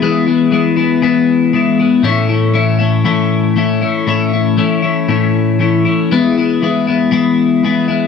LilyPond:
\new Staff \with { instrumentName = "Clean electric guitar" } { \time 4/4 \key e \major \tempo 4 = 118 <e gis b e'>8 <gis b e'>8 <e gis b e'>8 <gis b e'>8 <e gis b e'>4 <e gis b e'>8 <gis b e'>8 | <a, e a cis' e'>8 <a cis' e'>8 <e a cis' e'>8 <a cis' e'>8 <a, e a cis' e'>4 <e a cis' e'>8 <a cis' e'>8 | <a, e a cis' e'>8 <a cis' e'>8 <e a cis' e'>8 <a cis' e'>8 <a, e a cis' e'>4 <e a cis' e'>8 <a cis' e'>8 | <e gis b e'>8 <gis b e'>8 <e gis b e'>8 <gis b e'>8 <e gis b e'>4 <e gis b e'>8 <gis b e'>8 | }